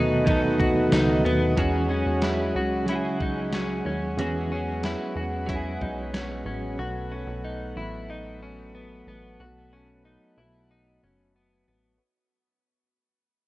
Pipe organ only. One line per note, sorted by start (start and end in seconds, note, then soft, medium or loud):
0.00 1.54 D#3 medium
0.00 1.53 A3 medium
0.00 1.53 B3 medium
0.00 1.53 F#4 medium
1.58 6.76 F#3 soft
1.58 6.75 G#3 medium
1.58 4.16 C#4 medium
1.58 11.97 F#4 medium
4.19 11.97 B3 medium
6.78 11.96 F#3 medium
6.78 11.96 A3 medium